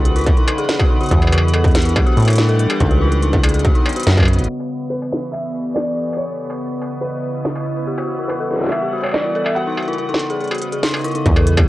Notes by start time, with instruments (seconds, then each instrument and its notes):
Already playing: acid bass C#2, ambient pad C#3 B3 F#5, synth texture B4 B5
0.00 ambient pad D#5
0.05 synth bell F#4, closed hi-hat
0.16 synth bell E4, closed hi-hat
0.19 closed hi-hat
0.21 closed hi-hat
0.24 closed hi-hat
0.27 kick, closed hi-hat
0.37 synth bell D#4, closed hi-hat
0.48 synth bell D#4, closed hi-hat, struck metal
0.58 synth bell G#4, closed hi-hat
0.69 synth bell G#4, snare, closed hi-hat
0.79 synth bell F#4, kick, closed hi-hat, struck metal
0.90 synth bell D#4
1.01 synth bell F#4, closed hi-hat
1.03 closed hi-hat
1.06 closed hi-hat
1.09 acid bass E2, ambient pad E3, synth bell F#4, kick, closed hi-hat
1.11 closed hi-hat
1.22 synth bell F#4, closed hi-hat, struck metal
1.27 struck metal
1.32 ambient pad D4, synth bell E4, closed hi-hat, struck metal
1.38 struck metal
1.43 synth bell E4
1.48 closed hi-hat
1.53 synth bell A4, ambient pad A4, closed hi-hat, struck metal
1.64 synth bell A4, kick, closed hi-hat
1.67 closed hi-hat
1.71 synth bell G4, snare, closed hi-hat
1.75 closed hi-hat
1.78 ambient pad G3, closed hi-hat
1.82 synth bell E4, closed hi-hat
1.85 closed hi-hat
1.89 closed hi-hat
1.96 synth bell G4, kick, closed hi-hat, struck metal
2.06 synth bell F#4, closed hi-hat
2.17 acid bass A2, closed hi-hat
2.19 closed hi-hat
2.22 closed hi-hat
2.25 synth bell E4, closed hi-hat
2.27 closed hi-hat, struck metal
2.30 closed hi-hat
2.33 closed hi-hat
2.35 synth bell E4, snare, closed hi-hat
2.48 synth bell A4, closed hi-hat
2.59 synth bell A4, closed hi-hat
2.69 synth bell G4, closed hi-hat, struck metal
2.80 acid bass C#2, ambient pad C#3, synth bell D#4, kick, closed hi-hat
2.87 ambient pad B3, synth bell F#4, closed hi-hat
3.01 synth bell E4
3.12 synth bell E4, closed hi-hat
3.22 synth bell D#4, closed hi-hat
3.33 synth bell D#4, kick, closed hi-hat
3.40 synth bell G#4, ambient pad D#5, closed hi-hat, struck metal
3.49 closed hi-hat
3.54 synth bell G#4, closed hi-hat
3.59 closed hi-hat
3.65 synth bell F#4, kick, closed hi-hat
3.75 synth bell D#4, closed hi-hat
3.86 synth bell C#5, closed hi-hat, struck metal
3.89 closed hi-hat
3.93 closed hi-hat
3.96 synth bell F#4, closed hi-hat
4.00 closed hi-hat
4.03 acid bass F#2, snare, closed hi-hat
4.07 synth bell C#5, closed hi-hat
4.17 synth bell B4, kick, closed hi-hat, struck metal
4.20 struck metal
4.23 struck metal
4.25 synth bell F#4, closed hi-hat, struck metal
4.33 closed hi-hat
4.39 acid bass G#1, closed hi-hat
4.44 closed hi-hat
4.49 ambient pad E3, synth texture B4 C#6, closed hi-hat
4.60 struck metal
4.70 closed hi-hat
4.81 closed hi-hat
4.90 felt piano B4
5.02 struck metal
5.13 snare, closed hi-hat
5.18 ambient pad G4
5.23 ambient pad A4 D5, closed hi-hat
5.32 felt piano E5, struck metal
5.55 closed hi-hat
5.65 closed hi-hat
5.74 felt piano D5, snare, struck metal
5.97 closed hi-hat
6.13 felt piano C#5, struck metal
6.18 ambient pad C#3, closed hi-hat
6.29 closed hi-hat
6.45 closed hi-hat
6.50 ambient pad D#5, struck metal
6.61 closed hi-hat
6.71 ambient pad E4, closed hi-hat
6.82 closed hi-hat, struck metal
6.92 ambient pad F#5, closed hi-hat
7.01 felt piano B4, closed hi-hat
7.24 closed hi-hat
7.34 closed hi-hat
7.45 snare, closed hi-hat
7.56 struck metal
7.61 closed hi-hat
7.66 closed hi-hat
7.77 closed hi-hat
7.87 ambient pad E3, synth bell G4, closed hi-hat
7.98 synth bell F#4, closed hi-hat, struck metal
8.03 ambient pad G3, closed hi-hat
8.08 synth bell F#4
8.19 synth bell E4, closed hi-hat
8.28 synth bell E4, felt piano B4, closed hi-hat, struck metal
8.40 synth bell A4, closed hi-hat
8.51 synth bell A4, ambient pad D5, snare, closed hi-hat
8.53 snare
8.56 snare
8.58 synth bell G4, snare
8.61 ambient pad A4, snare, closed hi-hat
8.64 snare
8.66 snare
8.69 synth bell E4, felt piano E5, snare, closed hi-hat, struck metal
8.82 synth bell G4, closed hi-hat
8.93 synth bell F#4, closed hi-hat
8.96 closed hi-hat
8.98 closed hi-hat
9.01 felt piano C#5, closed hi-hat
9.03 synth bell F#4, closed hi-hat, struck metal
9.06 closed hi-hat, struck metal
9.09 closed hi-hat, struck metal
9.11 synth bell E4, felt piano D5, snare, closed hi-hat, struck metal
9.14 closed hi-hat
9.19 closed hi-hat
9.22 synth bell E4, closed hi-hat
9.25 closed hi-hat
9.35 synth bell A4, closed hi-hat
9.44 synth bell A4, felt piano E5, closed hi-hat, struck metal
9.55 ambient pad C#3, synth bell F#4, felt piano F#5, closed hi-hat
9.67 synth bell D#4, closed hi-hat
9.70 closed hi-hat
9.72 closed hi-hat
9.75 synth bell F#4, closed hi-hat
9.77 closed hi-hat, struck metal
9.80 closed hi-hat
9.83 closed hi-hat
9.85 closed hi-hat
9.88 synth bell E4, closed hi-hat
9.93 closed hi-hat
9.98 synth bell E4, closed hi-hat
10.09 synth bell D#4, closed hi-hat
10.14 snare
10.20 synth bell D#4, closed hi-hat
10.30 synth bell G#4, ambient pad D#5, closed hi-hat
10.41 synth bell G#4, closed hi-hat
10.44 closed hi-hat
10.48 closed hi-hat
10.51 synth bell F#4, closed hi-hat, struck metal
10.55 closed hi-hat
10.58 closed hi-hat
10.62 synth bell F#4, closed hi-hat
10.72 synth bell G#4, closed hi-hat
10.83 synth bell D#4, snare, closed hi-hat
10.86 closed hi-hat
10.94 synth bell D#4, closed hi-hat, struck metal
10.96 closed hi-hat
10.99 closed hi-hat
11.01 closed hi-hat
11.04 synth bell E4, closed hi-hat
11.08 closed hi-hat
11.11 closed hi-hat
11.15 synth bell D#4, closed hi-hat
11.25 acid bass E2, ambient pad E3, synth bell E4, kick, closed hi-hat
11.32 ambient pad D4, synth bell A4, closed hi-hat, struck metal
11.46 synth bell A4, closed hi-hat
11.57 synth bell G4, kick, closed hi-hat, struck metal